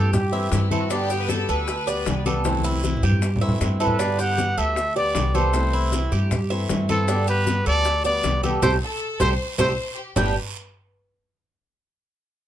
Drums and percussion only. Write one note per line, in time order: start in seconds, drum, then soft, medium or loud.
0.13 high bongo medium
0.13 high conga soft
0.13 low conga medium
0.13 long guiro medium
0.13 maracas medium
0.33 high bongo soft
0.33 high conga soft
0.52 high bongo medium
0.52 low bongo medium
0.52 high conga medium
0.52 short guiro medium
0.52 maracas medium
0.71 high bongo soft
0.71 high conga medium
0.71 short guiro medium
0.71 maracas soft
0.90 high bongo medium
0.90 high conga soft
0.90 long guiro medium
0.90 maracas medium
1.10 high bongo soft
1.10 high conga soft
1.10 maracas medium
1.29 high bongo medium
1.29 high conga medium
1.29 short guiro medium
1.29 maracas medium
1.49 high conga soft
1.49 short guiro medium
1.49 maracas soft
1.68 high bongo medium
1.68 high conga soft
1.68 long guiro medium
1.68 maracas medium
1.87 high bongo soft
1.87 high conga soft
1.87 maracas medium
2.06 high bongo medium
2.06 low bongo medium
2.06 high conga medium
2.06 short guiro medium
2.06 maracas medium
2.25 high bongo soft
2.25 high conga medium
2.25 short guiro medium
2.25 maracas soft
2.44 high bongo medium
2.44 high conga medium
2.44 long guiro medium
2.44 maracas medium
2.58 high conga medium
2.64 maracas medium
2.71 high conga medium
2.83 high bongo medium
2.83 high conga medium
2.83 short guiro medium
2.83 maracas medium
2.97 low conga medium
3.03 high bongo soft
3.03 short guiro medium
3.03 maracas soft
3.10 low conga medium
3.22 high bongo medium
3.22 long guiro medium
3.22 maracas medium
3.36 low conga medium
3.42 high bongo soft
3.49 low conga loud
3.61 high bongo medium
3.61 low bongo medium
3.61 low conga medium
3.61 short guiro medium
3.61 maracas medium
3.80 high bongo soft
3.80 short guiro medium
3.80 maracas soft
3.87 low conga loud
3.99 high bongo medium
3.99 long guiro medium
3.99 maracas medium
4.19 high bongo soft
4.19 high conga soft
4.19 maracas medium
4.38 high bongo medium
4.38 high conga medium
4.38 short guiro medium
4.38 maracas medium
4.58 short guiro medium
4.58 maracas soft
4.76 high bongo medium
4.76 high conga soft
4.76 long guiro medium
4.76 maracas medium
4.96 high bongo soft
4.96 high conga soft
5.15 high bongo medium
5.15 low bongo medium
5.15 high conga medium
5.15 short guiro medium
5.15 maracas medium
5.34 high bongo soft
5.34 high conga medium
5.34 short guiro medium
5.34 maracas soft
5.54 high bongo medium
5.54 high conga soft
5.54 long guiro medium
5.54 maracas medium
5.73 high conga soft
5.92 high bongo medium
5.92 high conga medium
5.92 short guiro medium
5.92 maracas medium
6.12 high bongo soft
6.12 high conga soft
6.12 short guiro medium
6.12 maracas soft
6.31 high bongo medium
6.31 high conga soft
6.31 low conga loud
6.31 long guiro medium
6.31 maracas medium
6.50 high bongo soft
6.50 high conga soft
6.69 high bongo medium
6.69 low bongo medium
6.69 high conga medium
6.69 short guiro medium
6.69 maracas medium
6.89 high bongo soft
6.89 high conga medium
6.89 short guiro medium
6.89 maracas soft
7.08 high bongo medium
7.08 long guiro medium
7.08 maracas medium
7.27 high bongo soft
7.27 high conga soft
7.27 maracas medium
7.47 high bongo medium
7.47 high conga medium
7.47 short guiro medium
7.47 maracas medium
7.66 high conga soft
7.66 short guiro medium
7.66 maracas soft
7.85 high bongo medium
7.85 high conga soft
7.85 long guiro medium
7.85 maracas medium
8.04 high bongo soft
8.04 high conga soft
8.04 maracas medium
8.23 high bongo medium
8.23 low bongo medium
8.23 high conga medium
8.23 short guiro medium
8.23 maracas medium
8.43 high bongo soft
8.43 high conga medium
8.43 short guiro medium
8.43 maracas soft
8.62 high bongo loud
8.62 low conga loud
8.62 long guiro loud
8.62 maracas loud
9.20 high bongo medium
9.20 low conga medium
9.20 long guiro loud
9.20 maracas medium
9.59 high bongo loud
9.59 low conga loud
9.59 long guiro loud
9.59 maracas loud
10.16 low bongo loud
10.16 low conga loud
10.16 long guiro loud
10.16 maracas loud